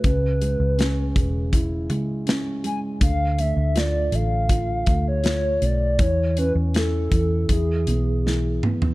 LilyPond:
<<
  \new Staff \with { instrumentName = "Soft synth lead" } { \time 4/4 \key e \mixolydian \tempo 4 = 80 b'2 r4. gis''8 | f''8 e''8 d''8 f''4~ f''16 cis''8. d''8 | cis''8 b'8 a'4 gis'4. r8 | }
  \new Staff \with { instrumentName = "Felt piano" } { \time 4/4 \key e \mixolydian cis8 gis8 cis'8 gis'8 e'8 gis8 cis'8 gis8 | d8 a8 f'8 a'8 f'8 a8 f'8 a8 | e8 cis'8 e'8 e8 e8 b8 e8 b8 | }
  \new Staff \with { instrumentName = "Fingered electric bass" } { \clef bass \time 4/4 \key e \mixolydian cis,8. cis,8. e,,4 cis,4 r8 | d,8. d,8. a,,4 d,4 b,,8 | e,8. e,8. e,8 e,8 b,,4 r8 | }
  \new DrumStaff \with { instrumentName = "Drums" } \drummode { \time 4/4 <hh bd>8 hh8 <hh sn>8 <hh bd>8 <hh bd>8 hh8 <hh sn>8 hh8 | <hh bd>8 hh8 <hh sn>8 hh8 <hh bd>8 <hh bd>8 <hh sn>8 hh8 | <hh bd>8 hh8 <hh sn>8 <hh bd>8 <hh bd>8 hh8 sn8 toml16 tomfh16 | }
>>